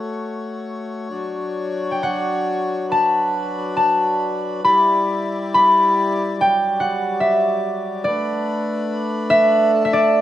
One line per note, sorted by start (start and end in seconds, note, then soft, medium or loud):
0.00 1.08 A3 medium
0.00 1.08 F#4 soft
0.00 2.86 C#5 medium
0.00 0.62 E5 medium
1.10 4.61 F#3 medium
1.10 4.61 D4 medium
1.91 2.09 G5 soft
2.03 3.64 F#5 medium
2.89 4.63 B4 medium
2.89 3.76 A5 medium
3.77 5.22 A5 medium
4.64 8.04 G3 medium
4.64 6.37 E4 medium
4.64 8.04 D5 medium
4.64 5.54 B5 medium
5.54 6.90 B5 medium
6.37 8.05 F#3 soft
6.37 6.86 G5 medium
6.80 8.41 F#5 medium
7.20 8.93 E5 medium
8.04 10.21 A3 medium
8.04 10.21 D4 medium
8.04 9.71 B4 medium
8.04 9.89 D5 medium
9.30 9.84 E5 loud
9.74 10.21 A4 medium
9.85 10.21 E5 medium
9.93 10.21 D5 medium